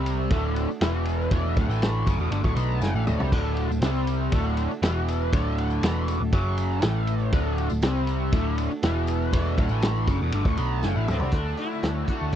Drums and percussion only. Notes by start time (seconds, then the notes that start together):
0.06 ride, tambourine
0.30 kick, ride
0.56 ride, tambourine
0.71 tambourine
0.81 snare, ride, tambourine
1.05 ride, tambourine
1.22 tambourine
1.31 kick, ride, tambourine
1.57 kick, ride, tambourine
1.71 tambourine
1.82 snare, ride, tambourine
2.07 kick, ride, tambourine
2.19 tambourine
2.31 ride, tambourine
2.44 kick, tambourine
2.56 ride, tambourine
2.70 tambourine
2.82 snare, tambourine
2.95 tambourine
3.07 mid tom, tambourine
3.20 floor tom, tambourine
3.32 kick, crash
3.57 ride, tambourine
3.72 tambourine
3.82 snare, ride, tambourine
3.96 tambourine
4.07 ride, tambourine
4.32 kick, ride
4.57 ride, tambourine
4.71 tambourine
4.83 snare, ride, tambourine
5.08 ride, tambourine
5.21 tambourine
5.33 kick, ride
5.58 ride, tambourine
5.70 tambourine
5.83 snare, ride, tambourine
5.96 tambourine
6.08 ride, tambourine
6.32 kick, ride
6.58 ride, tambourine
6.71 tambourine
6.82 snare, ride, tambourine
7.07 ride, tambourine
7.19 tambourine
7.32 kick, ride
7.58 ride, tambourine
7.70 tambourine
7.82 snare, ride, tambourine
7.95 tambourine
8.07 ride, tambourine
8.32 kick, ride
8.58 ride, tambourine
8.71 tambourine
8.83 snare, ride, tambourine
9.07 ride, tambourine
9.22 tambourine
9.33 kick, ride
9.46 tambourine
9.57 kick, ride, tambourine
9.69 tambourine
9.82 snare, ride, tambourine
9.96 tambourine
10.07 kick, ride, tambourine
10.21 tambourine
10.32 ride, tambourine
10.45 kick, tambourine
10.57 ride, tambourine
10.83 snare, tambourine
11.08 mid tom, tambourine
11.19 floor tom, tambourine
11.31 kick, closed hi-hat
11.57 closed hi-hat
11.83 snare, closed hi-hat, tambourine
12.07 kick, closed hi-hat
12.32 closed hi-hat